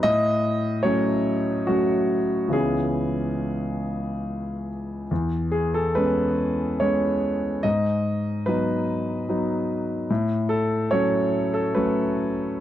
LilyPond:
<<
  \new Staff \with { instrumentName = "Grand piano" } { \time 3/4 \key fis \dorian \tempo 4 = 71 dis''4 cis''4 fis'4 | gis'2~ gis'8 r8 | r8 gis'16 a'16 b'4 cis''4 | dis''4 b'4. r8 |
r8 a'8 cis''8. a'16 b'4 | }
  \new Staff \with { instrumentName = "Grand piano" } { \time 3/4 \key fis \dorian a,4 <fis a cis'>4 <fis a cis'>4 | <cis, e b cis'>2. | e,4 <gis b cis'>4 <gis b cis'>4 | gis,4 <fis b dis'>4 <fis b dis'>4 |
a,4 <fis a cis'>4 <fis a cis'>4 | }
>>